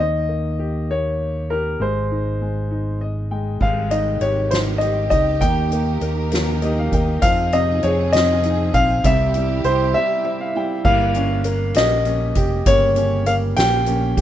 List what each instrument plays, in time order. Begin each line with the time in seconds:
Already playing: fingered electric bass D#2
0.00 upright piano D#3, grand piano D#5
0.29 upright piano A#3
0.59 upright piano G4
0.91 upright piano A#3, grand piano C#5
1.50 upright piano G4, grand piano A#4
1.80 fingered electric bass G#1, upright piano G#3, grand piano C5
2.11 upright piano D#4
2.42 upright piano G#3
2.71 upright piano D#4
3.01 upright piano D#5
3.31 upright piano G#3 G5
3.60 fingered electric bass G#1, string section C3 D#3 G4, steel-string acoustic guitar G3, upright piano G#3, grand piano F5, kick, crash
3.91 steel-string acoustic guitar D#4, upright piano D#4, grand piano D#5, closed hi-hat
4.21 fingered electric bass G#1, upright piano G4, grand piano C#5, closed hi-hat
4.51 steel-string acoustic guitar D#4, upright piano D#4, grand piano C5, snare, closed hi-hat
4.78 steel-string acoustic guitar C4, upright piano G4, grand piano D#5, closed hi-hat
5.10 fingered electric bass C#2, steel-string acoustic guitar D#4, upright piano D#4, grand piano D#5, kick, closed hi-hat
5.41 fingered electric bass D#2, string section D#3 D#4 A#4, upright piano D#3, steel-string acoustic guitar A#3, grand piano G5, kick, closed hi-hat
5.71 upright piano A#3, steel-string acoustic guitar D#4, closed hi-hat
6.01 fingered electric bass D#2, steel-string acoustic guitar A#3, upright piano A#4, closed hi-hat
6.31 upright piano A#3, steel-string acoustic guitar D#4, snare, closed hi-hat
6.62 steel-string acoustic guitar A#3, upright piano G4 D#5, closed hi-hat
6.79 upright piano F5
6.92 fingered electric bass D#2, upright piano A#3 G5, steel-string acoustic guitar D#4, kick, closed hi-hat
7.22 fingered electric bass F2, string section F3 G#4, upright piano F3, steel-string acoustic guitar C4, grand piano F5, kick, closed hi-hat
7.52 upright piano C3, steel-string acoustic guitar D#4, grand piano D#5, closed hi-hat
7.83 fingered electric bass F2, steel-string acoustic guitar C4, upright piano G#4, grand piano C#5, closed hi-hat
8.13 upright piano C4, steel-string acoustic guitar D#4, grand piano D#5, snare, closed hi-hat
8.43 steel-string acoustic guitar C4, upright piano D#4, closed hi-hat
8.74 fingered electric bass A#1, upright piano C4, steel-string acoustic guitar D#4, grand piano F5, kick, closed hi-hat
9.04 fingered electric bass C2, upright piano C3, string section C3 E4 G4, steel-string acoustic guitar G3, grand piano E5, kick, closed hi-hat
9.34 upright piano G3, steel-string acoustic guitar E4, closed hi-hat
9.64 fingered electric bass C2, steel-string acoustic guitar C4, upright piano G4, grand piano C5, closed hi-hat
9.94 upright piano G3, steel-string acoustic guitar E4, grand piano E5
10.25 steel-string acoustic guitar C4, upright piano E4 E5
10.41 upright piano F5
10.55 upright piano G3 G5, steel-string acoustic guitar E4
10.84 fingered electric bass G1, upright piano G3, steel-string acoustic guitar A#3, grand piano F5, kick, crash
11.14 steel-string acoustic guitar C#4, upright piano C#4, closed hi-hat
11.44 steel-string acoustic guitar A#3, upright piano A#4, closed hi-hat
11.74 fingered electric bass A#1, steel-string acoustic guitar C#4, upright piano G4, grand piano D#5, snare, closed hi-hat
12.05 steel-string acoustic guitar A#3, upright piano C#4, closed hi-hat
12.35 fingered electric bass F1, steel-string acoustic guitar G4, upright piano G4, kick, closed hi-hat
12.66 fingered electric bass G1, upright piano C#3, steel-string acoustic guitar A#3, grand piano C#5, kick, closed hi-hat
12.96 steel-string acoustic guitar C#4, upright piano C#4, closed hi-hat
13.26 steel-string acoustic guitar A#3, upright piano A#4, grand piano F5, closed hi-hat
13.56 fingered electric bass A#1, steel-string acoustic guitar C#4, upright piano G4, grand piano G5, snare, closed hi-hat
13.86 steel-string acoustic guitar A#3, upright piano C#4, closed hi-hat
14.17 fingered electric bass G1, steel-string acoustic guitar G4, upright piano G4, kick, closed hi-hat